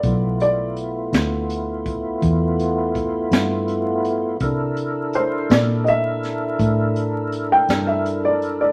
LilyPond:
<<
  \new Staff \with { instrumentName = "Upright piano" } { \time 12/8 \key g \mixolydian \tempo 4. = 55 d''8 d''8 r1 r4 | r4 c''8 d''8 <ees'' e''>2~ <ees'' e''>16 g''8 e''8 d''8 d''16 | }
  \new Staff \with { instrumentName = "Tonewheel organ" } { \time 12/8 \key g \mixolydian <a b e' f'>1. | <d' e' a' bes'>1. | }
  \new Staff \with { instrumentName = "Fingered electric bass" } { \clef bass \time 12/8 \key g \mixolydian b,,4. d,4. e,4. g,4. | c4. bes,4. a,4. g,4. | }
  \new DrumStaff \with { instrumentName = "Drums" } \drummode { \time 12/8 <hh bd>8 hh8 hh8 <hh sn>8 hh8 <hh bd>8 <hh bd>8 hh8 <hh bd>8 <hh sn>8 hh8 hh8 | <hh bd>8 hh8 hh8 <hh sn>8 hh8 <hh sn>8 <hh bd>8 hh8 hh8 <hh sn>8 hh8 hh8 | }
>>